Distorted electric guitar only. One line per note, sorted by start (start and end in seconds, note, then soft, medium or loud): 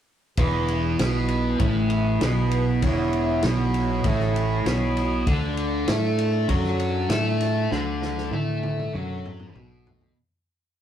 0.38 0.98 E2 loud
0.38 0.98 E3 medium
1.00 1.59 B2 medium
1.00 1.60 B3 loud
1.59 2.20 A2 loud
1.59 2.21 A3 loud
2.22 2.82 B2 medium
2.22 2.82 B3 loud
2.83 3.43 E2 medium
2.83 3.44 E3 loud
3.44 4.04 B2 loud
3.44 4.05 B3 loud
4.06 4.65 A2 loud
4.06 4.66 A3 loud
4.66 5.26 B2 medium
4.66 5.27 B3 loud
5.27 5.87 D3 medium
5.27 5.88 D4 loud
5.89 6.49 A3 loud
5.89 6.49 A4 loud
6.48 7.09 F#3 loud
6.48 7.09 F#4 loud
7.09 7.70 A3 medium
7.09 7.70 A4 loud
7.71 8.31 D3 medium
7.71 8.32 D4 medium
8.32 8.93 A3 loud
8.32 8.93 A4 loud
8.93 9.55 F#3 loud
8.93 9.55 F#4 loud
9.55 10.15 B2 medium
9.55 10.15 B3 loud